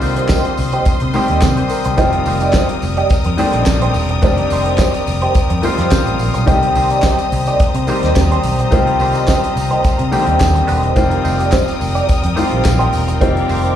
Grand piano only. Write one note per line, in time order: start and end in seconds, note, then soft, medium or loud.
0.00 2.00 D3 medium
0.00 1.13 D#3 medium
0.00 1.14 G3 medium
0.00 1.14 A#3 medium
0.00 1.14 C4 medium
0.00 0.73 F4 medium
0.00 1.15 G4 medium
1.13 1.88 D#3 medium
1.13 1.88 G3 medium
1.13 1.88 A#3 medium
1.13 1.88 C4 medium
1.13 1.42 G4 medium
1.57 1.69 C5 medium
1.70 1.84 A#4 medium
1.85 2.12 G4 medium
1.97 2.96 D#3 medium
1.97 2.97 G3 medium
1.97 2.97 A#3 medium
1.97 2.97 C4 medium
1.97 2.97 F4 medium
3.37 4.12 D#3 medium
3.37 4.12 G3 medium
3.37 3.45 A3 medium
3.37 4.12 C4 medium
3.37 4.13 D4 medium
3.44 4.16 A#3 medium
4.22 5.21 D#3 medium
4.22 5.21 G3 medium
4.22 5.21 A#3 medium
4.22 5.21 C4 medium
4.22 5.22 D4 medium
5.62 6.37 D#3 medium
5.62 6.37 G3 medium
5.62 6.37 A#3 medium
5.62 6.37 C4 medium
5.62 6.37 F4 medium
5.91 6.17 C5 medium
6.19 6.45 F5 medium
6.46 6.54 D3 medium
6.46 7.46 G3 medium
6.46 7.46 A#3 medium
6.46 7.46 C4 medium
6.46 7.46 G4 medium
6.53 7.49 D#3 medium
7.87 8.62 D#3 medium
7.87 8.62 G3 medium
7.87 8.62 A#3 medium
7.87 8.62 C4 medium
7.87 8.62 G4 medium
8.71 9.70 D#3 medium
8.71 9.71 G3 medium
8.71 9.71 A#3 medium
8.71 9.71 C4 medium
8.71 8.79 F4 medium
8.79 9.74 G4 medium
10.11 10.19 D3 medium
10.11 10.86 G3 medium
10.11 10.86 A#3 medium
10.11 10.87 C4 medium
10.11 10.87 G4 medium
10.18 10.89 D#3 medium
10.96 11.95 D#3 medium
10.96 11.95 G3 medium
10.96 11.95 A#3 medium
10.96 11.96 C4 medium
10.96 11.96 F4 medium
12.37 13.11 D#3 medium
12.37 13.11 G3 medium
12.37 13.11 A#3 medium
12.37 13.12 C4 medium
12.37 13.12 F4 medium
13.20 13.76 D#3 medium
13.20 13.76 G3 medium
13.20 13.76 A#3 medium
13.20 13.76 C4 medium
13.20 13.76 F4 medium